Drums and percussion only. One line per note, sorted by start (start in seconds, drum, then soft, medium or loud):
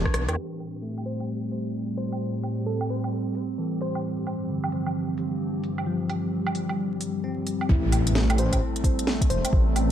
0.05 kick medium
0.05 cross-stick medium
0.14 cross-stick loud
0.14 open hi-hat medium
0.29 cross-stick medium
0.29 closed hi-hat soft
0.29 low woodblock soft
0.60 open hi-hat medium
0.60 low woodblock soft
0.98 low woodblock medium
1.06 open hi-hat medium
1.20 low woodblock soft
1.52 open hi-hat medium
1.98 open hi-hat medium
2.12 low woodblock soft
2.43 open hi-hat medium
2.43 low woodblock soft
2.81 low woodblock medium
2.89 open hi-hat medium
3.04 low woodblock soft
3.35 open hi-hat medium
3.81 open hi-hat medium
3.95 low woodblock soft
4.27 open hi-hat medium
4.27 low woodblock soft
4.64 low woodblock medium
4.72 open hi-hat medium
4.87 low woodblock soft
5.18 open hi-hat medium
5.64 open hi-hat medium
5.78 low woodblock soft
6.09 open hi-hat medium
6.09 low woodblock soft
6.47 low woodblock medium
6.55 open hi-hat medium
6.69 low woodblock soft
7.01 open hi-hat medium
7.47 open hi-hat medium
7.61 low woodblock soft
7.69 kick loud
7.92 open hi-hat medium
7.92 low woodblock soft
8.07 closed hi-hat medium
8.15 snare loud
8.30 closed hi-hat soft
8.30 low woodblock medium
8.38 open hi-hat medium
8.52 kick medium
8.52 closed hi-hat medium
8.52 low woodblock soft
8.76 closed hi-hat soft
8.84 kick loud
8.84 open hi-hat medium
8.99 closed hi-hat medium
9.07 snare loud
9.21 kick loud
9.21 closed hi-hat soft
9.30 open hi-hat medium
9.45 closed hi-hat medium
9.45 low woodblock soft
9.53 kick loud
9.76 open hi-hat medium
9.76 low woodblock soft